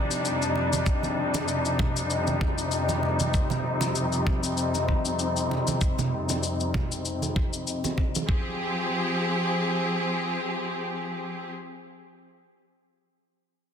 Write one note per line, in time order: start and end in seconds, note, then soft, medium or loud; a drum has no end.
0.00 8.24 F2 medium
0.00 8.24 C3 medium
0.00 8.25 G3 medium
0.00 3.30 D4 medium
0.00 8.24 D#4 medium
0.11 cabasa medium
0.25 cabasa soft
0.42 cabasa soft
0.56 muted conga soft
0.73 high conga medium
0.73 cabasa medium
0.86 kick loud
0.86 cabasa soft
1.03 high conga soft
1.03 cabasa soft
1.34 muted conga medium
1.34 cabasa medium
1.48 cabasa medium
1.65 cabasa soft
1.79 kick medium
1.79 muted conga medium
1.79 low conga medium
1.97 cabasa medium
2.10 cabasa soft
2.27 high conga medium
2.27 cabasa soft
2.41 kick loud
2.41 muted conga medium
2.58 cabasa medium
2.71 cabasa soft
2.89 muted conga soft
2.89 high conga medium
2.89 cabasa soft
3.03 muted conga soft
3.20 high conga medium
3.20 cabasa medium
3.34 8.25 C4 medium
3.34 kick loud
3.34 cabasa soft
3.50 high conga medium
3.50 low conga medium
3.50 cabasa soft
3.81 muted conga medium
3.81 cabasa medium
3.95 cabasa medium
4.12 cabasa soft
4.27 kick medium
4.27 muted conga medium
4.43 cabasa medium
4.57 cabasa soft
4.74 muted conga soft
4.74 cabasa soft
4.88 kick medium
4.88 high conga medium
5.05 cabasa medium
5.19 cabasa soft
5.37 cabasa soft
5.51 muted conga soft
5.67 high conga medium
5.67 cabasa medium
5.81 kick loud
5.81 cabasa soft
5.99 high conga medium
5.99 low conga medium
5.99 cabasa soft
6.29 muted conga medium
6.29 cabasa medium
6.43 cabasa medium
6.60 cabasa soft
6.74 kick medium
6.74 muted conga medium
6.74 low conga medium
6.92 cabasa medium
7.05 cabasa soft
7.22 high conga medium
7.22 cabasa soft
7.36 kick medium
7.36 muted conga medium
7.53 cabasa medium
7.67 cabasa soft
7.84 muted conga soft
7.84 high conga medium
7.84 cabasa soft
7.98 kick medium
7.98 muted conga soft
8.15 high conga medium
8.15 cabasa medium
8.29 11.52 F3 medium
8.29 11.52 C4 medium
8.29 11.52 G4 medium
8.29 11.52 G#4 medium
8.29 kick loud